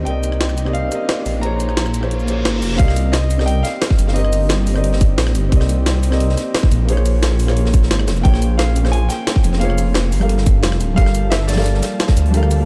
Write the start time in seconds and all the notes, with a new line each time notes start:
Already playing: A#3 C4 D#4 G4 A#4 C5 D5 D#5, riser
0.03 C2 C4 G4 A#4 G5, closed hi-hat
0.08 D5 D#5
0.24 closed hi-hat, shaker
0.32 cross-stick
0.41 snare, closed hi-hat
0.49 cross-stick, shaker
0.58 closed hi-hat, shaker
0.65 C4 G4 A#4 D5 D#5, cross-stick
0.73 F5, closed hi-hat
0.88 C4 G4 A#4, closed hi-hat, shaker
0.93 D5 D#5
1.09 snare, closed hi-hat
1.26 A#1, open hi-hat, shaker
1.39 A#3 F4 G#4 A#5, closed hi-hat
1.44 C5 C#5
1.60 closed hi-hat, shaker
1.69 cross-stick
1.77 snare, closed hi-hat
1.86 cross-stick, shaker
1.94 closed hi-hat, shaker
2.01 A#3 F4 G#4 C5 C#5, cross-stick
2.11 closed hi-hat, reverse cymbal
2.20 shaker
2.25 A#3 F4 G#4, closed hi-hat, shaker
2.30 C5 C#5
2.45 G#1, snare, closed hi-hat
2.62 F1, open hi-hat, shaker
2.76 C2 A#3 C4 D#4 G4 A#4 F5, kick, closed hi-hat
2.81 D5 D#5
2.88 cross-stick, snare
2.96 closed hi-hat, shaker
3.12 D#5, snare, closed hi-hat
3.30 closed hi-hat, shaker
3.38 C4 G4 A#4 D5 D#5, cross-stick, snare
3.46 G5, closed hi-hat
3.63 F5, snare, closed hi-hat, shaker
3.81 snare, closed hi-hat
3.90 kick, snare
3.99 G1, closed hi-hat, shaker
4.07 F5, snare
4.12 C4 G4 A#4 D#5, closed hi-hat
4.17 C5 D#5
4.25 cross-stick
4.32 closed hi-hat, open hi-hat, shaker
4.49 snare, closed hi-hat
4.67 closed hi-hat, open hi-hat, shaker
4.74 C4 G4 A#4 D5 D#5, cross-stick, closed hi-hat
4.84 closed hi-hat
4.93 snare
5.01 kick, closed hi-hat, shaker
5.18 A#1, snare, closed hi-hat
5.27 cross-stick, snare
5.35 G1, closed hi-hat, shaker
5.49 C2 C4 G4 A#4, kick, closed hi-hat
5.54 D5 D#5
5.60 cross-stick, snare
5.69 closed hi-hat, shaker
5.86 snare, closed hi-hat
6.03 closed hi-hat, shaker
6.10 C4 G4 A#4 D5 D#5, cross-stick, snare
6.20 closed hi-hat
6.29 snare
6.37 snare, closed hi-hat, shaker
6.55 snare, closed hi-hat
6.63 kick, snare
6.71 A#1, closed hi-hat, shaker
6.85 A#3 C#4 F4 G#4, closed hi-hat
6.90 C5 C#5
6.97 cross-stick
7.06 closed hi-hat, open hi-hat, shaker
7.22 snare, closed hi-hat
7.39 closed hi-hat, open hi-hat, shaker
7.47 A#3 F4 G#4 C5 C#5, cross-stick, snare
7.57 closed hi-hat
7.65 snare
7.74 kick, closed hi-hat, shaker
7.83 snare
7.91 G#1, snare, closed hi-hat
8.00 cross-stick
8.08 F1, snare, closed hi-hat, shaker
8.17 shaker
8.21 A#1 A#3 F4 G#4 G5, kick, closed hi-hat
8.27 C5 C#5
8.34 cross-stick, snare
8.42 closed hi-hat, shaker
8.58 F5, snare, closed hi-hat
8.76 closed hi-hat, shaker
8.83 A#3 F4 G#4 C5 C#5, cross-stick, snare
8.92 G#5, closed hi-hat
9.09 G5, snare, closed hi-hat, shaker
9.27 snare, closed hi-hat
9.36 kick, snare
9.44 F1, closed hi-hat, shaker
9.53 snare
9.58 A#3 F4 G#4 F5, closed hi-hat
9.63 C5 C#5
9.70 cross-stick
9.78 closed hi-hat, open hi-hat, shaker
9.94 snare, closed hi-hat
10.12 G1 A#3 A5, closed hi-hat, open hi-hat, shaker
10.19 G3 G4 A4 A#4 F5, cross-stick, closed hi-hat
10.29 closed hi-hat
10.38 snare
10.46 kick, closed hi-hat, shaker
10.63 F1, snare, closed hi-hat
10.72 cross-stick, snare
10.80 D1, closed hi-hat, shaker
10.94 G1 G3 G4 A4 F5, kick, closed hi-hat
10.99 A#4 F5
11.06 cross-stick, snare
11.15 closed hi-hat, shaker
11.30 E5, snare, closed hi-hat
11.47 D5, snare, closed hi-hat, shaker
11.52 G3, snare, closed hi-hat
11.57 G4 A4 A#4 F5, cross-stick, snare, closed hi-hat
11.61 snare, closed hi-hat
11.65 closed hi-hat
11.74 snare
11.82 snare, closed hi-hat, shaker
11.99 snare, closed hi-hat
12.08 kick, snare, closed hi-hat
12.17 D2 E3, closed hi-hat, shaker
12.26 closed hi-hat
12.30 G3 G4 A4, closed hi-hat
12.35 A#4 F5
12.43 cross-stick
12.51 closed hi-hat, open hi-hat, shaker